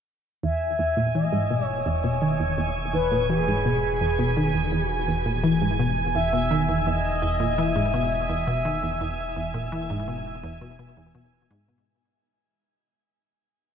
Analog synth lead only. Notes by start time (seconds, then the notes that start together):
0.44 E5
1.15 D#5
1.65 C#5
1.87 C#5
2.94 B4
3.30 G#4
4.88 F#4
6.15 E5
6.80 E5
6.87 D#5
7.58 E5